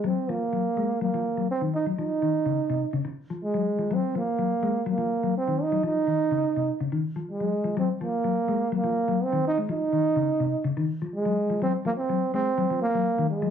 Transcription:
0.04 0.18 F#3 medium
0.04 0.31 C4 medium
0.29 0.43 F3 medium
0.29 1.02 A#3 medium
0.53 0.67 F#3 medium
0.77 0.91 G#3 medium
1.01 1.08 F#3 medium
1.01 1.47 A#3 medium
1.14 1.28 F3 medium
1.37 1.51 F#3 medium
1.51 1.61 C4 medium
1.61 1.75 D#3 medium
1.75 1.85 D#4 medium
1.86 1.93 F#3 medium
1.98 2.12 F3 medium
1.98 2.91 D#4 medium
2.22 2.36 D#3 medium
2.46 2.59 C#3 medium
2.70 2.83 C3 medium
2.93 3.00 C#3 medium
3.05 muted clean electric guitar stroke medium
3.30 3.44 F3 medium
3.44 3.95 G#3 medium
3.54 3.68 F#3 medium
3.79 3.85 F3 medium
3.91 4.04 F#3 medium
3.91 4.16 C4 medium
4.15 4.29 F3 medium
4.15 4.84 A#3 medium
4.39 4.52 F#3 medium
4.63 4.77 G#3 medium
4.86 4.93 F#3 medium
4.90 5.34 A#3 medium
4.98 5.12 F3 medium
5.23 5.37 F#3 medium
5.37 5.64 C4 medium
5.48 5.61 D#3 medium
5.62 5.85 D#4 medium
5.72 5.79 F#3 medium
5.83 5.97 F3 medium
5.83 6.77 D#4 loud
6.07 6.21 D#3 medium
6.31 6.45 C#3 medium
6.56 6.70 C3 medium
6.80 6.87 C#3 medium
6.92 7.06 D#3 medium
7.16 7.30 F3 medium
7.31 7.74 G#3 medium
7.40 7.54 F#3 medium
7.64 7.71 F3 medium
7.77 7.90 F#3 medium
7.77 7.89 C4 medium
8.01 8.15 F3 medium
8.01 8.70 A#3 medium
8.24 8.38 F#3 medium
8.48 8.62 G#3 medium
8.72 8.79 F#3 medium
8.72 9.25 A#3 medium
8.84 8.98 F3 medium
9.08 9.22 F#3 medium
9.23 9.46 C4 medium
9.33 9.46 D#3 medium
9.47 9.58 D#4 medium
9.58 9.64 G#3 medium
9.69 9.83 F3 medium
9.69 10.63 D#4 medium
9.93 10.06 D#3 medium
10.16 10.30 C#3 medium
10.40 10.54 C3 medium
10.64 10.72 C#3 medium
10.77 10.91 D#3 medium
11.02 11.15 F3 medium
11.15 11.59 G#3 medium
11.25 11.39 F#3 medium
11.50 11.57 F3 medium
11.62 11.75 F#3 medium
11.62 11.73 C4 medium
11.85 11.99 F3 medium
11.85 11.92 A#3 medium
11.98 12.31 C4 medium
12.09 12.23 F#3 medium
12.34 12.48 G#3 medium
12.34 12.79 C4 medium
12.58 12.65 F#3 medium
12.70 12.84 F3 medium
12.82 13.27 A#3 medium
12.95 13.08 F#3 medium
13.18 13.32 D#3 medium
13.30 13.50 G#3 medium
13.42 13.49 F#3 medium

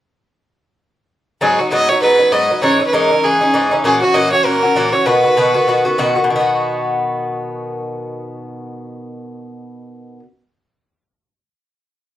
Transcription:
1.41 1.59 G#2 medium
1.41 1.59 F#3 medium
1.41 1.58 B3 medium
1.41 1.57 D#4 medium
1.41 1.61 G#4 medium
1.58 1.71 F#3 soft
1.58 1.71 B3 soft
1.58 1.72 D#4 soft
1.58 1.72 F#4 medium
1.71 1.89 G#2 medium
1.71 1.89 F#3 medium
1.71 1.89 B3 medium
1.71 1.87 D#4 medium
1.71 1.90 D#5 medium
1.89 2.01 F#3 soft
1.89 2.02 B3 soft
1.89 2.02 D#4 soft
1.89 2.01 C#5 medium
2.02 2.19 G#2 medium
2.02 2.20 F#3 medium
2.02 2.19 B3 medium
2.02 2.18 D#4 medium
2.02 2.34 B4 loud
2.19 2.31 F#3 soft
2.19 2.32 B3 soft
2.19 2.32 D#4 soft
2.32 2.50 G#2 medium
2.32 2.50 F#3 medium
2.32 2.50 B3 medium
2.32 2.49 D#4 medium
2.32 2.62 D#5 medium
2.50 2.62 F#3 soft
2.50 2.63 B3 soft
2.50 2.62 D#4 soft
2.62 2.80 G#2 medium
2.62 2.80 E3 medium
2.62 2.80 C#4 medium
2.62 2.79 D#4 medium
2.62 2.85 C#5 medium
2.80 2.92 E3 soft
2.80 2.93 C#4 soft
2.80 2.93 D#4 soft
2.87 2.94 B4 medium
2.93 3.11 G#2 medium
2.93 3.11 E3 medium
2.93 3.11 C#4 medium
2.93 3.10 D#4 medium
2.93 3.25 A#4 medium
3.11 3.24 E3 soft
3.11 3.24 C#4 soft
3.11 3.24 D#4 soft
3.23 3.41 G#2 medium
3.23 3.42 E3 medium
3.23 3.41 C#4 medium
3.23 3.40 D#4 medium
3.23 3.72 G#4 medium
3.41 3.53 E3 soft
3.41 3.53 C#4 soft
3.41 3.54 D#4 soft
3.54 3.71 G#2 medium
3.54 3.72 E3 medium
3.54 3.71 C#4 medium
3.54 3.70 D#4 medium
3.71 3.84 E3 soft
3.71 3.84 C#4 medium
3.71 3.84 D#4 medium
3.84 4.02 A#2 medium
3.84 4.02 E3 medium
3.84 4.01 C#4 medium
3.84 4.00 F#4 medium
3.84 4.01 G#4 medium
4.01 4.14 E3 soft
4.01 4.14 C#4 soft
4.01 4.14 F#4 soft
4.01 4.16 F#4 medium
4.14 4.32 A#2 medium
4.14 4.32 E3 medium
4.14 4.32 C#4 medium
4.14 4.31 F#4 medium
4.14 4.31 D#5 medium
4.32 4.44 E3 soft
4.32 4.45 C#4 soft
4.32 4.46 F#4 medium
4.32 4.46 C#5 medium
4.44 4.63 A#2 medium
4.44 4.63 E3 medium
4.44 4.63 C#4 medium
4.44 4.61 F#4 medium
4.44 4.94 A#4 medium
4.62 4.75 E3 soft
4.62 4.75 C#4 soft
4.62 4.76 F#4 soft
4.76 4.93 A#2 medium
4.76 4.93 E3 medium
4.76 4.92 C#4 medium
4.76 4.91 F#4 medium
4.92 5.06 E3 soft
4.92 5.06 C#4 soft
4.92 5.06 F#4 soft
4.92 5.07 C#5 medium
5.05 5.24 B2 medium
5.05 5.24 D#3 medium
5.05 5.24 B3 medium
5.05 5.23 F#4 medium
5.05 5.97 B4 medium
5.24 5.36 D#3 soft
5.24 5.37 B3 soft
5.24 5.37 F#4 soft
5.37 5.54 B2 medium
5.37 5.55 D#3 medium
5.37 5.54 B3 medium
5.37 5.53 F#4 medium
5.54 5.67 D#3 soft
5.54 5.67 B3 soft
5.54 5.67 F#4 medium
5.67 5.85 B2 medium
5.67 5.85 D#3 medium
5.67 5.85 B3 medium
5.67 5.84 F#4 medium
5.85 5.97 D#3 soft
5.85 5.98 B3 soft
5.85 5.98 F#4 medium
5.98 6.16 B2 medium
5.98 6.16 D#3 medium
5.98 6.15 B3 medium
5.98 6.14 F#4 medium
6.15 6.29 D#3 soft
6.15 6.29 B3 soft
6.15 6.28 F#4 medium
6.24 10.19 B2 medium
6.30 10.22 D#3 medium
6.36 10.25 B3 medium
6.40 10.27 F#4 medium

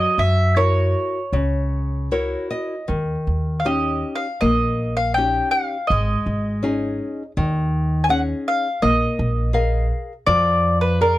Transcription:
0.00 0.54 F#3 medium
0.00 0.21 D#5 medium
0.18 0.92 F#2 medium
0.18 0.58 E5 medium
0.56 1.18 E4 soft
0.56 1.18 F#4 soft
0.56 1.18 A#4 soft
0.56 2.07 C#5 medium
1.32 2.34 C#2 medium
1.32 2.09 C#3 medium
2.11 2.74 E4 soft
2.11 2.74 F#4 soft
2.11 2.74 A#4 soft
2.11 2.48 C#5 soft
2.51 2.87 D#5 medium
2.88 3.14 D#2 medium
2.88 3.63 D#3 soft
3.27 4.02 D#2 medium
3.60 3.66 F5 soft
3.65 4.26 C#4 soft
3.65 4.26 D#4 soft
3.65 4.26 G4 soft
3.65 4.18 D#5 medium
4.16 4.42 F5 medium
4.41 5.39 A#1 medium
4.41 5.15 A#3 medium
4.41 4.94 D#5 medium
4.97 5.14 F5 medium
5.14 5.76 C#4 soft
5.14 5.76 D#4 soft
5.14 5.51 G5 medium
5.18 5.76 G4 soft
5.51 5.90 F5 medium
5.87 6.14 G#1 medium
5.87 7.31 D#5 medium
5.91 6.62 G#3 medium
6.26 6.98 G#1 medium
6.63 7.22 C#4 soft
6.63 7.22 D#4 soft
6.63 7.22 G#4 soft
7.37 8.32 D#2 medium
7.37 8.08 D#3 medium
8.04 8.10 G#5 medium
8.09 8.67 C#4 soft
8.09 8.67 D#4 soft
8.09 8.67 G#4 soft
8.09 8.20 F#5 medium
8.48 8.84 F5 medium
8.82 9.06 A#1 medium
8.82 9.51 A#3 medium
8.82 9.86 D#5 medium
9.19 9.89 A#1 medium
9.53 10.12 G#4 soft
9.53 10.12 A#4 soft
9.53 10.12 F5 soft
10.27 11.19 F2 medium
10.27 10.98 F3 medium
10.27 10.78 D5 medium
10.81 11.00 B4 medium
11.01 11.19 G#4 soft
11.01 11.19 A#4 soft
11.01 11.19 A#4 medium
11.01 11.19 D5 soft

